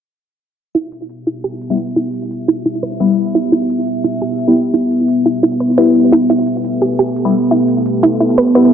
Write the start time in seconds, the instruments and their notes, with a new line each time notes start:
0.75 ambient pad B3 G4 E5, synth arpeggio sound E4, closed hi-hat
0.92 closed hi-hat
1.09 closed hi-hat
1.27 synth arpeggio sound E4, closed hi-hat
1.44 synth arpeggio sound G4, closed hi-hat
1.61 closed hi-hat
1.70 synth stab G3 B3 E4
1.79 closed hi-hat
1.96 synth arpeggio sound E4, closed hi-hat
2.13 closed hi-hat
2.31 closed hi-hat
2.48 synth arpeggio sound E4, closed hi-hat
2.65 synth arpeggio sound E4, closed hi-hat
2.83 synth arpeggio sound B4, closed hi-hat
3.00 synth stab G3 B3 E4, synth arpeggio sound B4, closed hi-hat
3.17 closed hi-hat
3.35 synth arpeggio sound E4, closed hi-hat
3.52 synth arpeggio sound E4, closed hi-hat
3.70 closed hi-hat
3.87 closed hi-hat
4.04 synth arpeggio sound E4, closed hi-hat
4.22 synth arpeggio sound G4, closed hi-hat
4.39 closed hi-hat
4.48 synth stab G3 B3 E4
4.56 closed hi-hat
4.73 synth arpeggio sound E4, closed hi-hat
4.91 closed hi-hat
5.08 closed hi-hat
5.25 synth arpeggio sound E4, closed hi-hat
5.43 synth arpeggio sound E4, closed hi-hat
5.60 synth arpeggio sound B4, closed hi-hat
5.78 synth stab G3 B3 E4, synth arpeggio sound B4, closed hi-hat
5.95 closed hi-hat
6.12 synth arpeggio sound E4, closed hi-hat
6.30 synth arpeggio sound E4, ambient pad A4, closed hi-hat
6.47 closed hi-hat
6.64 closed hi-hat
6.82 synth arpeggio sound G4, closed hi-hat
6.99 synth arpeggio sound G4, closed hi-hat
7.16 closed hi-hat
7.25 synth stab G3 B3 E4
7.34 closed hi-hat
7.51 synth arpeggio sound E4, closed hi-hat
7.68 closed hi-hat
7.86 closed hi-hat
8.03 synth arpeggio sound E4, closed hi-hat
8.20 synth arpeggio sound E4, closed hi-hat
8.38 synth arpeggio sound B4, closed hi-hat
8.55 synth stab G3 B3 E4, synth arpeggio sound B4, closed hi-hat